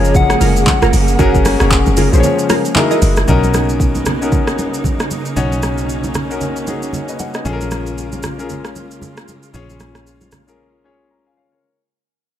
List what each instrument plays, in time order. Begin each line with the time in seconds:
Already playing: log drum bass F#1, string section C#3 G#3 A#3 G#4, grand piano F3 C#4 F4 G#4 A#4, synth pluck F4 G#4 A#4, soft synth lead C#5
0.05 shaker
0.15 soft synth lead F#5, kick, low conga, shaker
0.30 cross-stick, shaker
0.41 log drum bass F1, synth pluck F4 G#4 A#4, open hi-hat, high conga, shaker
0.56 shaker
0.67 kick, clap, high conga, low conga, shaker
0.82 log drum bass F1, synth pluck F4 G#4 A#4, cross-stick, shaker
0.93 log drum bass F#1, open hi-hat, high conga, shaker
1.08 shaker
1.19 log drum bass F#1, grand piano C#4 F#4 G#4 A#4, synth pluck F#4 G#4 A#4, kick, low conga, shaker
1.34 kick, high conga, shaker
1.45 cross-stick, open hi-hat, high conga, shaker
1.60 log drum bass F1, grand piano C#4 F#4 G#4 C#5, cross-stick, shaker
1.71 kick, clap, shaker
1.86 log drum bass F#1, high conga, shaker
1.97 synth pluck F4 G#4 A#4, open hi-hat, high conga, low conga, shaker
2.12 log drum bass A#1, grand piano F3 C#4 G#4 C5, shaker
2.20 grand piano C#5, low conga, shaker
2.39 shaker
2.49 synth pluck F4 G#4 A#4, cross-stick, open hi-hat, high conga, shaker
2.65 shaker
2.75 string section E3 F#4, grand piano D#4 E4 G#4 A#4, clap, high conga, low conga, shaker
2.90 synth pluck E4 G#4 A#4 D#5, shaker
3.02 log drum bass F#1, open hi-hat, high conga, shaker
3.17 cross-stick, shaker
3.28 fingered electric bass B1, string section C#3 A#3 B3 D#4, grand piano C#4 D#4 F#4 A#4, kick, low conga, shaker
3.43 high conga, shaker
3.54 cross-stick, high conga, shaker
3.69 shaker
3.80 kick, shaker
3.95 high conga, shaker
4.06 cross-stick, high conga, low conga, shaker
4.21 grand piano C#4 D#4 F#4 A#4, shaker
4.32 kick, low conga, shaker
4.47 cross-stick, shaker
4.58 high conga, shaker
4.74 shaker
4.84 kick, high conga, low conga, shaker
5.00 cross-stick, shaker
5.11 high conga, shaker
5.25 shaker
5.36 fingered electric bass B1, grand piano C#4 D#4 F#4 C#5, string section C#4, low conga, shaker
5.52 high conga, shaker
5.63 cross-stick, high conga, shaker
5.78 shaker
5.89 shaker
6.04 high conga, shaker
6.14 cross-stick, high conga, low conga, shaker
6.30 grand piano C#4 D#4 F#4 A#4, shaker
6.41 low conga, shaker
6.56 shaker
6.67 grand piano C#4 D#4 F#4 G#4, high conga, shaker
6.82 shaker
6.93 grand piano A#4 C#5, high conga, low conga, shaker
7.08 grand piano B4 D#5, shaker
7.19 grand piano D#5 F#5, high conga, shaker
7.34 grand piano B4 D#5, cross-stick, shaker
7.45 fingered electric bass A#1, string section C#3 G#3 F4, grand piano C#4 F4 G#4 A4, low conga, shaker
7.53 grand piano A#4
7.61 high conga, shaker
7.71 cross-stick, high conga, shaker
7.86 shaker
7.98 shaker
8.12 high conga, shaker
8.23 cross-stick, high conga, low conga, shaker
8.38 grand piano C#4 F4 G#4 A#4, shaker
8.49 low conga, shaker
8.65 cross-stick, shaker
8.76 high conga, shaker
8.91 shaker
9.01 high conga, low conga, shaker
9.17 cross-stick, shaker
9.28 high conga, shaker
9.43 shaker
9.54 fingered electric bass A#1, grand piano C#4 F4 G#4 C#5, low conga, shaker
9.69 high conga, shaker
9.80 cross-stick, high conga, shaker
9.95 cross-stick, shaker
10.07 shaker
10.21 high conga, shaker
10.32 cross-stick, high conga, low conga, shaker
10.47 grand piano C#4 F4 G#4 A#4, shaker
10.84 grand piano C#4 F4 G#4 C#5
11.11 grand piano A#5
11.26 grand piano F5 G#5
11.37 grand piano C#5 F5
11.52 grand piano A#4 C#5